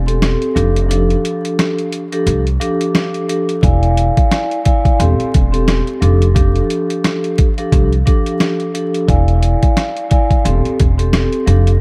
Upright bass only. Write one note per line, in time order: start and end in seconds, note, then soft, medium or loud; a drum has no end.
0.00 0.33 E1 medium
0.56 1.14 F1 loud
2.27 2.55 C2 medium
3.63 4.08 E1 loud
5.00 5.16 E1 loud
5.19 muted upright bass stroke soft
5.35 5.80 E1 medium
6.02 6.59 F1 loud
7.72 8.01 C2 loud
9.08 9.54 E1 loud
10.45 10.61 E1 loud
10.65 muted upright bass stroke soft
10.80 11.25 E1 medium
11.47 11.81 F1 loud